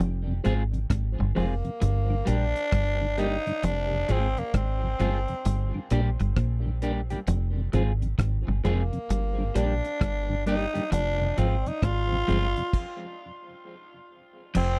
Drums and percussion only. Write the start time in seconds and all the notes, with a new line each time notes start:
0.45 closed hi-hat
0.74 closed hi-hat
0.90 kick, cross-stick, closed hi-hat
1.36 open hi-hat
1.65 closed hi-hat
1.82 closed hi-hat
2.27 closed hi-hat
2.56 closed hi-hat
2.72 kick, cross-stick, closed hi-hat
3.18 closed hi-hat
3.47 closed hi-hat
3.63 closed hi-hat
4.09 closed hi-hat
4.37 closed hi-hat
4.54 kick, cross-stick, closed hi-hat
5.00 closed hi-hat
5.28 closed hi-hat
5.45 closed hi-hat
5.90 closed hi-hat
6.20 closed hi-hat
6.36 kick, cross-stick, closed hi-hat
6.82 closed hi-hat
7.10 closed hi-hat
7.27 closed hi-hat
7.73 closed hi-hat
8.02 closed hi-hat
8.19 kick, cross-stick, closed hi-hat
8.65 closed hi-hat
8.93 closed hi-hat
9.10 closed hi-hat
9.55 closed hi-hat
9.85 closed hi-hat
10.01 kick, cross-stick, closed hi-hat
10.47 closed hi-hat
10.75 closed hi-hat
10.92 closed hi-hat
11.38 closed hi-hat
11.66 closed hi-hat
11.82 kick, cross-stick, closed hi-hat
12.28 closed hi-hat
12.56 closed hi-hat
12.73 kick, crash
14.55 crash